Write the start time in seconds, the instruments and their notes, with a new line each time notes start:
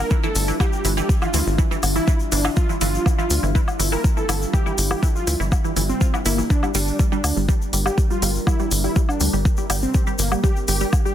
Already playing: ambient pad G3 D4 E4 F4
0.00 analog synth lead A#4
0.10 synth arpeggio sound E3 E4, kick, shaker
0.23 synth arpeggio sound E3 E4, analog synth lead A4, shaker
0.35 analog synth bass G1, open hi-hat, shaker
0.47 synth arpeggio sound E3 E4, shaker
0.60 synth arpeggio sound E3 E4, analog synth lead G4, kick, low woodblock, shaker
0.73 shaker
0.85 analog synth bass G1, synth arpeggio sound E3 E4, open hi-hat, shaker
0.97 synth arpeggio sound E3 E4, analog synth lead G4, shaker
1.09 kick, shaker
1.22 synth arpeggio sound E3 E4, analog synth lead F4, low woodblock, shaker
1.34 analog synth bass D2, synth arpeggio sound E3 E4, open hi-hat, shaker
1.47 analog synth bass G1, shaker
1.58 synth arpeggio sound E3 E4, kick, shaker
1.71 synth arpeggio sound E3 E4, shaker
1.83 analog synth bass G1, open hi-hat, low woodblock, shaker
1.96 synth arpeggio sound E3 E4, analog synth lead E4, shaker
2.07 synth arpeggio sound E3 E4, kick, shaker
2.20 shaker
2.32 analog synth bass G1, synth arpeggio sound E3 E4, analog synth lead D4, open hi-hat, shaker
2.44 synth arpeggio sound E3 E4, low woodblock, shaker
2.56 analog synth lead F4, kick, shaker
2.69 synth arpeggio sound E3 E4, shaker
2.81 analog synth bass G1, synth arpeggio sound E3 E4, analog synth lead F4, open hi-hat, shaker
2.95 shaker
3.06 synth arpeggio sound E3 E4, kick, low woodblock, shaker
3.18 synth arpeggio sound E3 E4, analog synth lead F4, shaker
3.30 analog synth bass D2, open hi-hat, shaker
3.43 analog synth bass G1, synth arpeggio sound E3 E4, shaker
3.55 synth arpeggio sound E3 E4, kick, shaker
3.68 low woodblock, shaker
3.79 analog synth bass G1, synth arpeggio sound E3 E4, open hi-hat, shaker
3.92 synth arpeggio sound E3 E4, analog synth lead A#4, shaker
4.04 kick, shaker
4.17 synth arpeggio sound E3 E4, analog synth lead A4, shaker
4.29 analog synth bass G1, synth arpeggio sound E3 E4, open hi-hat, low woodblock, shaker
4.42 shaker
4.53 synth arpeggio sound E3 E4, analog synth lead G4, kick, shaker
4.66 synth arpeggio sound E3 E4, shaker
4.78 analog synth bass G1, open hi-hat, shaker
4.91 synth arpeggio sound E3 E4, analog synth lead G4, low woodblock, shaker
5.03 synth arpeggio sound E3 E4, kick, shaker
5.15 analog synth lead F4, shaker
5.27 analog synth bass D2, synth arpeggio sound E3 E4, open hi-hat, shaker
5.40 analog synth bass G1, synth arpeggio sound E3 E4, shaker
5.52 kick, low woodblock, shaker
5.64 synth arpeggio sound E3 E4, shaker
5.76 analog synth bass G1, synth arpeggio sound E3 E4, open hi-hat, shaker
5.89 analog synth lead C4, shaker
6.01 synth arpeggio sound F4 F5, kick, shaker
6.14 synth arpeggio sound E3 E4, low woodblock, shaker
6.25 analog synth bass G1, analog synth lead A#3, synth arpeggio sound E4 E5, open hi-hat, shaker
6.38 synth arpeggio sound E3 E4, shaker
6.50 analog synth lead D4, ambient pad D4 A#4, kick, shaker
6.63 synth arpeggio sound G3 G4, low woodblock, shaker
6.75 analog synth bass G1, synth arpeggio sound G3 G4, analog synth lead D4, open hi-hat, shaker
6.88 shaker
6.99 synth arpeggio sound G3 G4, kick, shaker
7.12 synth arpeggio sound G3 G4, analog synth lead D4, shaker
7.24 analog synth bass D2, open hi-hat, low woodblock, shaker
7.37 analog synth bass G1, synth arpeggio sound G3 G4, shaker
7.48 synth arpeggio sound G3 G4, kick, shaker
7.62 shaker
7.73 analog synth bass G1, synth arpeggio sound G3 G4, open hi-hat, shaker
7.86 synth arpeggio sound G3 G4, analog synth lead G4, low woodblock, shaker
7.98 kick, shaker
8.10 synth arpeggio sound G3 G4, analog synth lead F4, shaker
8.22 analog synth bass G1, synth arpeggio sound G3 G4, open hi-hat, shaker
8.35 shaker
8.47 synth arpeggio sound G3 G4, analog synth lead E4, kick, low woodblock, shaker
8.59 synth arpeggio sound G3 G4, shaker
8.71 analog synth bass G1, open hi-hat, shaker
8.84 synth arpeggio sound G3 G4, analog synth lead E4, shaker
8.96 synth arpeggio sound G3 G4, kick, shaker
9.09 analog synth lead D4, low woodblock, shaker
9.20 analog synth bass D2, synth arpeggio sound G3 G4, open hi-hat, shaker
9.33 analog synth bass G1, synth arpeggio sound G3 G4, shaker
9.45 kick, shaker
9.57 synth arpeggio sound G3 G4, shaker
9.70 analog synth bass G1, synth arpeggio sound G3 G4, open hi-hat, low woodblock, shaker
9.82 analog synth lead C4, shaker
9.94 synth arpeggio sound G3 G4, kick, shaker
10.07 synth arpeggio sound G3 G4, shaker
10.19 analog synth bass G1, analog synth lead A#3, open hi-hat, shaker
10.32 synth arpeggio sound G3 G4, low woodblock, shaker
10.43 synth arpeggio sound G3 G4, analog synth lead G4, kick, shaker
10.56 shaker
10.68 analog synth bass G1, synth arpeggio sound G3 G4, analog synth lead G4, open hi-hat, shaker
10.80 synth arpeggio sound G3 G4, shaker
10.93 kick, low woodblock, shaker
11.05 synth arpeggio sound G3 G4, analog synth lead G4, shaker